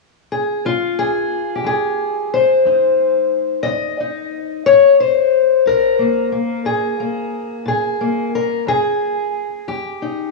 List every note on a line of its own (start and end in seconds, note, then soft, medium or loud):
0.32 0.66 G#4 medium
0.65 1.25 F2 medium
0.65 1.66 F4 medium
0.99 1.65 G#4 medium
1.55 2.31 G4 medium
1.64 2.25 F2 medium
1.64 2.99 G#4 medium
2.34 3.62 C5 medium
2.65 3.25 F2 medium
2.65 3.99 D#4 soft
3.63 4.26 F2 medium
3.63 4.65 D#5 medium
4.00 4.63 D#4 soft
4.66 5.27 A#2 medium
4.66 5.00 C#5 loud
5.00 6.34 C5 medium
5.66 6.26 A#2 medium
5.66 6.65 A#4 medium
5.99 6.31 A#3 soft
6.32 6.99 A#3 soft
6.65 7.26 A#2 medium
6.65 7.67 G#4 medium
7.00 8.00 A#3 soft
7.66 8.27 A#2 medium
7.66 8.35 G#4 medium
8.01 8.68 A#3 soft
8.35 8.68 A#4 medium
8.67 9.28 F2 medium
8.67 10.31 G#4 loud
9.68 10.28 F2 medium
9.68 10.31 G4 medium
10.02 10.31 D#4 soft